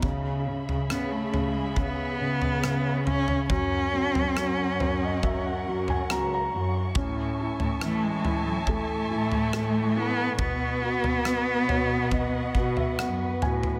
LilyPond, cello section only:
\new Staff \with { instrumentName = "Cello section" } { \clef bass \time 4/4 \key cis \minor \tempo 4 = 69 cis8. cis16 cis4. cis4. | fis,8. fis,16 fis,4. fis,8 cis,8 fis,8 | a,8. a,16 a,4. a,4. | b,8. b,16 b,4. b,8 fis,8 a,8 | }